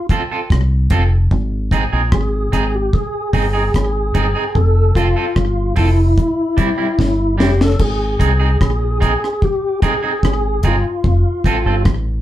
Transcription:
0.09 clean electric guitar C4 F4 A4, kick, closed hi-hat
0.31 clean electric guitar C4 F4 A4
0.50 fingered electric bass C2, kick, cross-stick
0.90 fingered electric bass F1, clean electric guitar C4 F4 A4, kick, closed hi-hat
1.31 fingered electric bass G#1, kick
1.71 clean electric guitar C4 D#4 G#4, kick, closed hi-hat
1.93 fingered electric bass A#1, clean electric guitar C4 D#4 G#4
2.12 fingered electric bass G#1, tonewheel organ G#4, kick, cross-stick
2.52 fingered electric bass G#1, clean electric guitar C4 D#4 G#4, kick, closed hi-hat
2.75 tonewheel organ G4
2.93 tonewheel organ G#4, kick
3.33 fingered electric bass G1, clean electric guitar C4 D#4 G#4, kick, open hi-hat
3.53 clean electric guitar C4 D#4 G#4
3.74 fingered electric bass G#1, kick, cross-stick, hi-hat pedal
4.14 fingered electric bass G1, clean electric guitar C4 D#4 G#4, kick, closed hi-hat
4.35 clean electric guitar C4 D#4 G#4
4.55 fingered electric bass F1, tonewheel organ A4, kick
4.95 fingered electric bass F1, clean electric guitar C4 F4 A4, tonewheel organ F4, kick, closed hi-hat
5.16 clean electric guitar C4 F4 A4
5.36 fingered electric bass G1, tonewheel organ F4, kick, cross-stick
5.76 fingered electric bass F1, clean electric guitar C4 F4 A4, tonewheel organ E4, kick, open hi-hat
6.17 kick, hi-hat pedal
6.57 clean electric guitar G3 C4 E4, kick, closed hi-hat
6.78 clean electric guitar G3 C4 E4
6.99 fingered electric bass G1, kick, snare
7.38 fingered electric bass F1, clean electric guitar G3 C4 E4, snare
7.42 tonewheel organ G4
7.61 tonewheel organ A4, snare
7.79 fingered electric bass G#1, tonewheel organ G#4, kick, crash
8.19 fingered electric bass C2, clean electric guitar C4 D#4 G#4, kick, closed hi-hat
8.40 clean electric guitar C4 D#4 G#4
8.61 fingered electric bass A#1, tonewheel organ G#4, kick, cross-stick
9.00 clean electric guitar C4 D#4 G#4, kick, closed hi-hat
9.24 cross-stick
9.42 tonewheel organ G4, kick
9.82 clean electric guitar C4 D#4 G#4, tonewheel organ G#4, kick, closed hi-hat
10.03 clean electric guitar C4 D#4 G#4
10.23 fingered electric bass G#1, kick, cross-stick
10.63 fingered electric bass G1, clean electric guitar C4 D#4 G#4, tonewheel organ F4, kick, closed hi-hat
11.04 fingered electric bass F1, kick
11.44 fingered electric bass A1, clean electric guitar C4 F4 A4, kick, closed hi-hat
11.66 fingered electric bass G1, clean electric guitar C4 F4 A4
11.85 fingered electric bass A1, kick, cross-stick

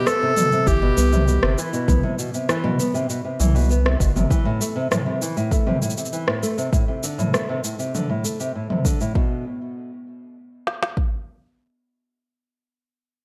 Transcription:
0.07 nylon-string guitar B3, clarinet A4, cross-stick, shaker
0.22 nylon-string guitar C3
0.37 nylon-string guitar B2, mid tom, shaker
0.52 nylon-string guitar C3, shaker
0.67 analog synth bass G1, nylon-string guitar E3, clarinet G4, kick, shaker
0.82 nylon-string guitar B2
0.97 analog synth bass C2, nylon-string guitar B3, shaker
1.12 nylon-string guitar C3, mid tom, shaker
1.27 nylon-string guitar B2, shaker
1.43 analog synth bass G1, nylon-string guitar C3, cross-stick
1.58 nylon-string guitar E3, clarinet E4, shaker
1.73 nylon-string guitar B2, shaker
1.88 analog synth bass C2, nylon-string guitar B3, kick, mid tom, shaker
2.03 nylon-string guitar C3
2.18 nylon-string guitar B2, shaker
2.34 nylon-string guitar C3, shaker
2.49 nylon-string guitar E3, cross-stick, shaker
2.64 nylon-string guitar B2, mid tom
2.79 nylon-string guitar B3, shaker
2.94 nylon-string guitar C3, shaker
3.10 nylon-string guitar B2, shaker
3.25 nylon-string guitar C3
3.40 analog synth bass C2, nylon-string guitar E3, mid tom, shaker
3.55 nylon-string guitar B2, shaker
3.58 shaker
3.61 shaker
3.63 shaker
3.66 shaker
3.69 nylon-string guitar B3, shaker
3.71 shaker
3.85 nylon-string guitar C3, cross-stick
4.00 analog synth bass G1, nylon-string guitar B2, kick, shaker
4.16 nylon-string guitar C3, mid tom, shaker
4.30 nylon-string guitar E3, kick, shaker
4.45 nylon-string guitar A2
4.61 nylon-string guitar A3, shaker
4.76 nylon-string guitar C3
4.91 nylon-string guitar A2, cross-stick, mid tom, shaker
5.06 nylon-string guitar C3
5.22 nylon-string guitar E3, shaker
5.37 nylon-string guitar A2, shaker
5.51 nylon-string guitar A3, kick, shaker
5.67 nylon-string guitar C3, mid tom
5.82 nylon-string guitar A2, shaker
5.90 shaker
5.97 nylon-string guitar C3, shaker
6.05 shaker
6.13 nylon-string guitar E3, shaker
6.27 nylon-string guitar A2, cross-stick
6.43 nylon-string guitar A3, shaker
6.58 nylon-string guitar C3, shaker
6.73 nylon-string guitar A2, kick, shaker
6.88 nylon-string guitar C3
7.03 nylon-string guitar D3, shaker
7.18 nylon-string guitar A2, mid tom, shaker
7.33 nylon-string guitar A3, cross-stick, shaker
7.49 nylon-string guitar C3
7.64 nylon-string guitar A2, shaker
7.79 nylon-string guitar C3, shaker
7.95 nylon-string guitar D3, mid tom, shaker
8.10 nylon-string guitar A2
8.24 nylon-string guitar A3, shaker
8.40 nylon-string guitar C3, shaker
8.55 nylon-string guitar A2
8.70 nylon-string guitar C3, mid tom
8.85 nylon-string guitar D3, kick, shaker
9.01 nylon-string guitar A2, shaker
9.15 nylon-string guitar B2, kick
10.67 snare
10.83 snare
10.97 kick

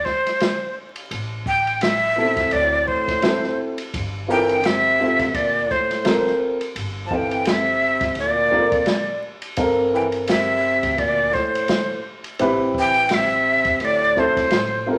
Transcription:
0.05 flute C5, kick, snare
0.26 snare, ride
0.40 snare, hi-hat pedal, ride
0.96 ride
1.11 upright bass A1, ride
1.46 flute G5, kick
1.67 ride
1.81 flute E5, snare, hi-hat pedal, ride
2.16 upright piano B3 E4 F#4 A4
2.22 upright piano C4
2.36 upright bass E2, kick, snare, ride
2.50 upright bass D2, trombone A2, flute D5, ride
2.86 trombone A2, flute C5, kick
3.08 kick, snare, ride
3.22 upright piano C4 E4 F#4 A4, snare, hi-hat pedal, ride
3.44 snare
3.78 ride
3.94 upright bass G1, kick, ride
4.28 trombone E3, upright piano C4 F4 A4 A#4, flute G5
4.49 ride
4.63 trombone C3, flute E5, snare, hi-hat pedal, ride
5.00 upright piano C4 F4 A4 C5
5.19 upright bass D2, kick, snare, ride
5.33 upright bass D2, trombone A#2, flute D5, kick, ride
5.68 trombone A2, flute C5, kick, snare
5.91 snare, ride
6.04 upright piano C4 F4 A4 A#4, snare, hi-hat pedal, ride
6.27 snare
6.61 ride
6.75 upright bass G1, ride
7.06 trombone F3, flute A5
7.11 trombone E3, upright piano C4 A4 C5 F5, flute G5, kick
7.31 ride
7.45 trombone C3, flute E5, snare, hi-hat pedal, ride
8.01 upright bass D2, kick, snare, ride
8.15 upright bass D2, trombone A#2, ride
8.19 flute D5
8.51 upright piano C4 F4 A4 A#4, kick
8.72 kick, ride
8.86 snare, hi-hat pedal, ride
9.42 ride
9.57 upright bass G1, upright piano C4 A4 A#4 F5, kick, ride
9.93 trombone E3, flute G5
10.12 ride
10.27 trombone C3, flute E5, snare, hi-hat pedal, ride
10.83 upright bass D2, kick, ride
10.97 upright bass D2, trombone A#2, flute D5, kick, ride
11.32 trombone A2, flute C5, kick, snare
11.55 ride
11.68 snare, hi-hat pedal, ride
12.24 ride
12.39 upright bass A1, upright piano C4 E4 G4 B4, ride
12.74 trombone E3, kick
12.79 flute G5
12.94 ride
13.09 trombone C3, snare, hi-hat pedal, ride
13.14 flute E5
13.65 upright bass E2, kick, ride
13.80 upright bass D2, trombone A2, ride
13.85 flute D5
14.16 trombone A2, upright piano C4 E4 F#4 A4, flute C5, kick, snare
14.37 kick, snare, ride
14.50 upright bass A1, snare, hi-hat pedal, ride
14.87 upright piano C4 F4 A4 A#4

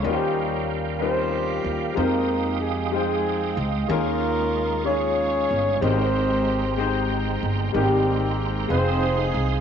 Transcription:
Already playing: tonewheel organ F5
0.03 upright bass D#2, grand piano D#3 G3 C#4 D#4 F4 A#4, horn section G3 A#3 C#4 G4, tonewheel organ A#4 G5
0.13 grand piano C5
0.99 grand piano G3 C#4 D#4 F4 A#4, horn section C4 F4 G4 C5
1.64 upright bass D#2
1.94 upright bass F2, grand piano G#3 D#4 F4 G4 C5, tonewheel organ G#3 G5 D#6, horn section A#3 D#4 G4 A#4
2.61 horn section G#3 G#4
2.92 grand piano G#3 D#4 F4 C5 G5, horn section G#3 C4 D#4 G#4
3.57 upright bass C#2
3.88 upright bass D#2, grand piano D#3 G#3 C#4 D#4 F4 A#4, horn section A#3 C#4 F4 A#4, tonewheel organ C#6
4.84 grand piano G#3 C#4 D#4 F4 C#5, horn section C#4 F4 G#4 C#5
5.51 upright bass G1
5.80 upright bass G#1, grand piano G#2 G#3 B3 D#4 G4, horn section C4 G4 C5, tonewheel organ G5 A#5 C6
5.85 grand piano A#4
5.89 grand piano C4
6.77 grand piano G#3 C4 D#4 G4 C5
7.43 upright bass G1
7.72 upright bass G#1, grand piano G#2 G#3 A#3 D#4 G4 A#4, horn section G3 C4 G4, tonewheel organ G#3 G5 A#5 C6
7.76 horn section A#3, grand piano C4
8.68 upright bass F1, grand piano G#3 C4 D#4 F4 B4, horn section C4 G#4 C5, tonewheel organ G#4 F5 D#6
8.72 horn section D#4
8.77 grand piano C5
9.34 upright bass C2

